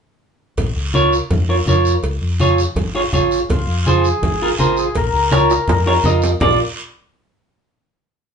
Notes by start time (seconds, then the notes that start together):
0.57 A#1, cowbell, high conga, low conga, long guiro
0.76 C#2
0.94 F4 A#4 C#5, high conga, short guiro
1.12 short guiro
1.30 F2, cowbell, high conga, low conga, long guiro
1.49 F4 A#4 C#5
1.66 F2 F4 A#4 C#5, high conga, short guiro
1.85 short guiro
2.03 C#2, cowbell, high conga, long guiro
2.21 F2
2.40 F4 G#4 C#5, high conga, short guiro
2.58 short guiro
2.75 G#1, cowbell, high conga, low conga, long guiro
2.95 F4 G#4 C#5
3.13 G#1 F4 G#4 C#5, high conga, low conga, short guiro
3.31 short guiro
3.49 C#2 F4, cowbell, high conga, low conga, long guiro
3.67 F2
3.86 F4 G#4 C5, high conga, short guiro
4.04 short guiro
4.22 G#1, cowbell, high conga, low conga, long guiro
4.42 F4 G#4 A#4
4.59 G#1 F4 G#4 A#4 C5, high conga, short guiro
4.77 G#4, short guiro
4.95 A#1 A#4, cowbell, high conga, low conga, long guiro
5.13 C#2
5.31 F4 A#4 C#5, high conga, high timbale, short guiro
5.50 high timbale, short guiro
5.67 F2, cowbell, high conga, low conga, high timbale, long guiro
5.86 F4 A#4 C#5, low timbale
6.03 F2 F4 A#4 D#5, high conga, low timbale, short guiro
6.22 low timbale, short guiro
6.40 A#1 F4 A#4 D5, low conga, low timbale, long guiro